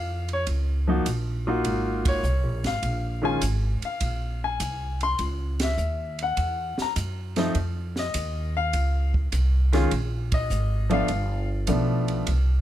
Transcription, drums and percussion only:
0.29 ride soft
0.47 kick soft
0.47 ride medium
1.06 kick soft
1.06 hi-hat pedal medium
1.06 ride medium
1.64 kick soft
1.64 ride medium
2.05 kick medium
2.05 ride medium
2.23 hi-hat pedal medium
2.64 snare soft
2.64 ride soft
2.83 kick soft
2.83 ride medium
3.41 kick soft
3.41 hi-hat pedal medium
3.41 ride medium
3.82 ride soft
4.00 kick soft
4.00 ride medium
4.60 kick soft
4.60 hi-hat pedal medium
4.60 ride medium
5.01 ride soft
5.19 kick soft
5.19 ride medium
5.60 snare medium
5.60 ride medium
5.77 hi-hat pedal soft
6.19 ride soft
6.37 kick soft
6.37 ride medium
6.78 snare soft
6.96 kick soft
6.96 hi-hat pedal medium
6.96 ride medium
7.36 snare soft
7.36 ride soft
7.55 kick soft
7.55 ride medium
7.96 snare soft
8.14 kick soft
8.14 hi-hat pedal soft
8.14 ride medium
8.73 kick soft
8.73 ride medium
9.14 kick medium
9.32 kick soft
9.32 hi-hat pedal soft
9.32 ride medium
9.73 snare soft
9.73 ride soft
9.91 kick soft
9.91 ride medium
10.32 kick medium
10.32 ride medium
10.50 hi-hat pedal medium
10.90 ride soft
11.08 kick soft
11.08 ride medium
11.67 kick soft
11.67 hi-hat pedal soft
11.67 ride medium
12.08 ride soft
12.27 kick soft
12.27 ride medium

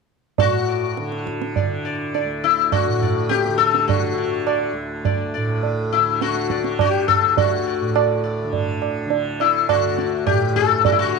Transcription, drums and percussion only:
0.38 tabla tin medium
0.38 tabla ge medium
0.97 tabla te medium
1.12 tabla te soft
1.27 tabla ke medium
1.42 tabla te medium
1.56 tabla tin medium
1.56 tabla ge medium
2.15 tabla tin medium
2.72 tabla na medium
2.72 tabla ge medium
3.02 tabla ge soft
3.31 tabla te medium
3.45 tabla te medium
3.60 tabla ke soft
3.75 tabla te medium
3.89 tabla tin medium
3.89 tabla ge medium
4.47 tabla na medium
5.05 tabla tin medium
5.05 tabla ge medium
5.63 tabla tin medium
6.21 tabla te medium
6.35 tabla te soft
6.50 tabla ke medium
6.64 tabla te medium
6.79 tabla na medium
6.79 tabla ge medium
7.08 tabla ge soft
7.37 tabla tin medium
7.37 tabla ge medium
7.96 tabla na medium
8.53 tabla tin medium
8.53 tabla ge medium
8.82 tabla na soft
9.10 tabla tin medium
9.40 tabla na medium
9.69 tabla na medium
9.69 tabla ge medium
9.98 tabla te medium
10.27 tabla na medium
10.27 tabla ge medium
10.56 tabla ge soft
10.85 tabla tin loud
10.85 tabla ge medium

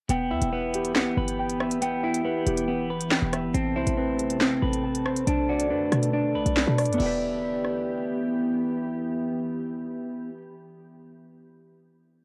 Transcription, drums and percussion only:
0.09 closed hi-hat medium
0.42 closed hi-hat medium
0.74 closed hi-hat medium
0.85 closed hi-hat medium
0.96 snare loud
0.96 clap medium
1.28 closed hi-hat medium
1.50 closed hi-hat medium
1.60 cross-stick loud
1.71 closed hi-hat medium
1.82 closed hi-hat medium
2.14 closed hi-hat medium
2.47 closed hi-hat medium
2.57 closed hi-hat medium
3.01 closed hi-hat medium
3.11 snare loud
3.11 clap loud
3.33 cross-stick loud
3.33 closed hi-hat medium
3.55 closed hi-hat medium
3.87 closed hi-hat medium
4.19 closed hi-hat medium
4.30 closed hi-hat medium
4.41 snare loud
4.41 clap medium
4.73 closed hi-hat medium
4.95 closed hi-hat medium
5.06 cross-stick loud
5.16 closed hi-hat medium
5.27 closed hi-hat medium
5.60 closed hi-hat medium
5.92 cross-stick loud
5.92 closed hi-hat medium
6.03 closed hi-hat medium
6.46 closed hi-hat medium
6.57 snare loud
6.57 clap loud
6.78 cross-stick medium
6.78 closed hi-hat medium
6.78 open hi-hat medium
6.86 closed hi-hat medium
6.93 closed hi-hat medium
7.00 crash medium
7.65 cross-stick medium

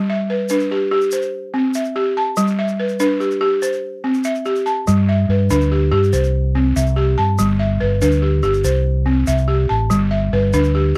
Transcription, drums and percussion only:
0.49 shaker medium
0.60 shaker soft
1.01 shaker soft
1.11 shaker medium
1.22 shaker soft
1.74 shaker medium
1.85 shaker soft
2.37 shaker medium
2.47 shaker soft
2.68 shaker soft
2.89 shaker soft
3.00 shaker medium
3.21 shaker soft
3.31 shaker soft
3.62 shaker medium
3.73 shaker soft
4.14 shaker soft
4.24 shaker soft
4.35 shaker soft
4.45 shaker soft
4.56 shaker soft
4.66 shaker soft
4.88 shaker medium
5.50 shaker medium
5.61 shaker soft
6.04 shaker soft
6.13 shaker medium
6.24 shaker soft
6.77 shaker medium
6.87 shaker soft
7.39 shaker medium
8.02 shaker medium
8.12 shaker soft
8.43 shaker soft
8.54 shaker soft
8.64 shaker medium
9.27 shaker medium
9.38 shaker soft
9.91 shaker medium
10.53 shaker medium
10.64 shaker soft

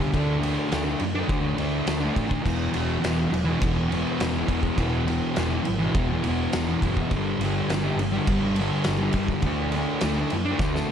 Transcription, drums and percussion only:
0.14 kick medium
0.14 ride loud
0.43 ride medium
0.72 snare loud
0.72 ride loud
1.00 ride medium
1.29 kick loud
1.29 ride loud
1.58 ride medium
1.87 snare loud
1.87 ride loud
2.16 kick loud
2.16 ride medium
2.31 kick medium
2.46 kick medium
2.46 crash loud
2.74 ride medium
3.04 snare loud
3.04 ride loud
3.34 ride medium
3.62 kick loud
3.62 ride loud
3.92 ride medium
4.20 snare loud
4.20 ride loud
4.48 kick medium
4.48 ride medium
4.63 kick medium
4.78 kick loud
4.78 ride loud
5.08 ride medium
5.36 snare loud
5.36 ride loud
5.65 ride medium
5.95 kick loud
5.95 ride loud
6.24 ride medium
6.53 snare loud
6.53 ride loud
6.82 kick loud
6.82 ride medium
6.97 kick medium
7.11 kick medium
7.11 ride loud
7.41 ride medium
7.69 snare loud
7.69 ride loud
7.99 ride medium
8.27 kick loud
8.27 ride loud
8.56 ride medium
8.84 snare loud
8.84 ride loud
9.13 kick medium
9.13 ride medium
9.28 kick medium
9.42 kick medium
9.42 ride loud
9.72 ride medium
10.01 snare loud
10.01 ride loud
10.30 ride medium
10.59 kick loud
10.59 snare medium
10.76 snare medium

